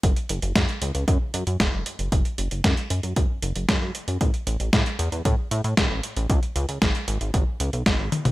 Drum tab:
HH |xxxxxxxxx-xxx-xx|xxxxxxxxx-xxx-xx|xxxxxxxxx-xxx-xx|xxxxxxxxx-xxx-xx|
SD |----o-------o---|----o-------o---|----o-------o---|----o-------o---|
T1 |----------------|----------------|----------------|--------------o-|
T2 |----------------|----------------|----------------|---------------o|
BD |o---o---o---o---|o---o---o---o---|o---o---o---o---|o---o---o---o---|